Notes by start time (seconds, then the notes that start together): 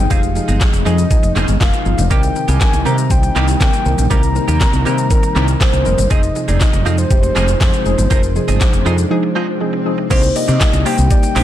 Already playing: C3 F3 G#3 D#4 G5
0.10 F1 F3 G#3 C4 D#4 G4 G#4 F5, kick, closed hi-hat, shaker
0.23 muted clean electric guitar stroke, closed hi-hat, shaker
0.36 F3 D#4 G#4, muted clean electric guitar stroke, shaker
0.48 G1 G#3 C4 D#4 G#4, closed hi-hat, shaker
0.61 F3 D#4 G#4, muted clean electric guitar stroke, kick, snare, clap, closed hi-hat, shaker
0.73 F1, muted clean electric guitar stroke, closed hi-hat, shaker
0.85 F2 F3 G#3 C4 D#4 G#4 D#5, shaker
0.98 closed hi-hat, shaker
1.10 F3 D#4 G#4, kick, closed hi-hat, shaker
1.23 F1, muted clean electric guitar stroke, closed hi-hat, shaker
1.35 F1 F3 G#3 C4 D#4 G#4, clap, shaker
1.48 G1, muted clean electric guitar stroke, closed hi-hat, shaker
1.60 F1 F3 D#4 A#4 F5, muted clean electric guitar stroke, kick, snare, clap, closed hi-hat, shaker
1.73 muted clean electric guitar stroke, closed hi-hat, shaker
1.85 G1 F3 D#4 F4, shaker
1.98 F1, muted clean electric guitar stroke, closed hi-hat, shaker
2.10 C2 D#3 G3 A#3 C4 D#4 G4 A#4 G5, kick, closed hi-hat, shaker
2.23 muted clean electric guitar stroke, closed hi-hat, shaker
2.35 D#3 C4 A#4, muted clean electric guitar stroke, shaker
2.48 C2 G3 A#3 D#4 G4 G#5, closed hi-hat, shaker
2.60 D#3 C4 A#4, muted clean electric guitar stroke, kick, snare, clap, closed hi-hat, shaker
2.73 C2, muted clean electric guitar stroke, closed hi-hat, shaker
2.85 C3 D#3 G3 A#3 C4 D#4 G4 A#4 A#5, shaker
2.98 muted clean electric guitar stroke, closed hi-hat, shaker
3.10 C2 D#3 C4 C5 G5, kick, closed hi-hat, shaker
3.23 muted clean electric guitar stroke, closed hi-hat, shaker
3.35 C2 D#3 G3 A#3 C4 D#4 G4, clap, shaker
3.48 muted clean electric guitar stroke, closed hi-hat, shaker
3.60 C3 D#3 C4 A#4 G5, muted clean electric guitar stroke, kick, snare, clap, closed hi-hat, shaker
3.73 muted clean electric guitar stroke, closed hi-hat, shaker
3.85 C2 D#3 C4 A#4, shaker
3.98 A#1, muted clean electric guitar stroke, closed hi-hat, shaker
4.10 C2 D#3 G3 A#3 C4 D#4 G4 A#4 A#5, kick, closed hi-hat, shaker
4.23 muted clean electric guitar stroke, closed hi-hat, shaker
4.35 D#3 C4 A#4, muted clean electric guitar stroke, shaker
4.48 D#2 G3 A#3 D#4 G4, closed hi-hat, shaker
4.60 D#3 C4 A#4, muted clean electric guitar stroke, kick, snare, clap, closed hi-hat, shaker
4.73 C2, muted clean electric guitar stroke, closed hi-hat, shaker
4.85 C3 D#3 G3 A#3 C4 D#4 G4 A#4, shaker
4.98 muted clean electric guitar stroke, closed hi-hat, shaker
5.10 D#3 C4 A#4, kick, closed hi-hat, shaker
5.23 muted clean electric guitar stroke, closed hi-hat, shaker
5.35 C2 D#3 G3 A#3 C4 D#4 G4 A#4, clap, shaker
5.48 muted clean electric guitar stroke, closed hi-hat, shaker
5.60 D#3 C4 A#4 C5, muted clean electric guitar stroke, kick, snare, clap, closed hi-hat, shaker
5.73 C2, muted clean electric guitar stroke, closed hi-hat, shaker
5.85 F1 D#3 C4 A#4, shaker
5.98 G1, muted clean electric guitar stroke, closed hi-hat, shaker
6.10 F1 F3 G#3 C4 D#4 G#4 D#5, kick, closed hi-hat, shaker
6.23 muted clean electric guitar stroke, closed hi-hat, shaker
6.36 F3 D#4 G#4, muted clean electric guitar stroke, shaker
6.48 F1 F3 C4 D#4 G#4 D5, closed hi-hat, shaker
6.61 F3 D#4 G#4 D#5, muted clean electric guitar stroke, kick, snare, clap, closed hi-hat, shaker
6.73 F1, muted clean electric guitar stroke, closed hi-hat, shaker
6.85 F2 F3 C4 D#4 F4 G#4, shaker
6.98 C5, muted clean electric guitar stroke, closed hi-hat, shaker
7.10 F1 F3 D#4 G4, kick, closed hi-hat, shaker
7.23 muted clean electric guitar stroke, closed hi-hat, shaker
7.35 F1 F3 C4 D#4 G#4, clap, shaker
7.48 muted clean electric guitar stroke, closed hi-hat, shaker
7.60 F2 F3 D#4 G#4, muted clean electric guitar stroke, kick, snare, clap, closed hi-hat, shaker
7.73 muted clean electric guitar stroke, closed hi-hat, shaker
7.85 F1 F3 D#4 G#4, shaker
7.98 G1, muted clean electric guitar stroke, closed hi-hat, shaker
8.10 F1 F3 C4 D4 D#4 G#4 A#4, kick, closed hi-hat, swell, shaker
8.23 muted clean electric guitar stroke, closed hi-hat, shaker
8.35 F3 D#4 G#4, muted clean electric guitar stroke, shaker
8.48 G1 F3 C4 D#4 G#4, closed hi-hat, shaker
8.60 F3 D#4 G#4, muted clean electric guitar stroke, kick, snare, clap, closed hi-hat, shaker
8.73 F1, muted clean electric guitar stroke, closed hi-hat, shaker
8.85 F2 F3 C4 D#4 G#4, shaker
8.98 muted clean electric guitar stroke, closed hi-hat, shaker
9.11 F3 D#4 G#4
9.23 muted clean electric guitar stroke
9.35 F3 C4 D#4 F4 G#4
9.48 muted clean electric guitar stroke
9.61 F3 D#4 G#4, muted clean electric guitar stroke
9.73 muted clean electric guitar stroke
9.86 F3 D#4 G#4
9.98 muted clean electric guitar stroke
10.10 C2 C3 D#3 G3 A#3 C4 D#4 G4 C5, kick, closed hi-hat, crash, shaker
10.23 muted clean electric guitar stroke, closed hi-hat, shaker
10.35 A#3 D#4 G4 D5 D#5, muted clean electric guitar stroke, open hi-hat, shaker
10.48 C3 D#3 A#3 C4 G4, closed hi-hat, shaker
10.61 A#3 D#4 G4 D5, kick, snare, clap, closed hi-hat, shaker
10.73 C2, muted clean electric guitar stroke, closed hi-hat, shaker
10.85 D#3 A#3 C4 D#4 G4 C5 G5, open hi-hat, shaker
10.98 C2, closed hi-hat, shaker
11.11 A#3 D#4 G4 D5 G5, kick, closed hi-hat, shaker
11.23 muted clean electric guitar stroke, closed hi-hat, shaker
11.35 A#1 D#3 A#3 C4 D#4 G4 C5, clap, open hi-hat, shaker